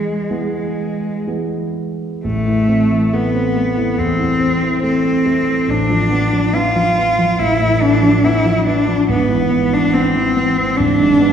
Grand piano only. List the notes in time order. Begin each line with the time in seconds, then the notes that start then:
Already playing: E2 E3 G#3 B3
0.30 E3 G#3 B3
1.27 E3 G#3 B3
2.24 A1
2.47 E3
2.68 C4
2.92 E3
3.13 A3
3.35 C4
3.56 A3
3.77 E3
3.98 E2
4.19 E3
4.40 C4
4.62 E3
4.84 A3
5.04 C4
5.26 A3
5.47 E3
5.68 A1
5.90 F3
6.11 B3
6.33 F3
6.53 B3
6.76 F3
6.98 B3
7.18 F3
7.39 A1
7.60 A2
7.82 B3
8.02 F3
8.24 B3
8.45 F3
8.67 B3
8.88 F3
9.09 G#1
9.29 E3
9.51 B3
9.73 E3
9.93 B3
10.15 E3
10.37 B3
10.58 E3
10.80 G#1
11.01 G#2
11.20 B3